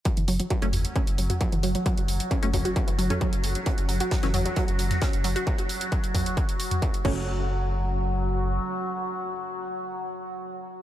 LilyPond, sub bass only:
\new Staff \with { instrumentName = "Sub bass" } { \clef bass \time 4/4 \key fis \minor \tempo 4 = 133 r16 fis,,16 fis,,16 r8 fis,,16 fis,,16 r8 fis,,16 fis,,16 r8 fis,,16 fis,,16 r16 | r16 fis,,16 fis,,16 r8 fis,,16 fis,,16 r8 fis,,16 fis,,16 r8 fis,,16 fis,,16 r16 | r16 fis,,16 fis,,16 r8 fis,,16 fis,,16 r8 fis,,16 fis,,16 r8 fis,,16 fis,,16 r16 | r2. r8 fis,,8~ |
fis,,2. r4 | r1 | }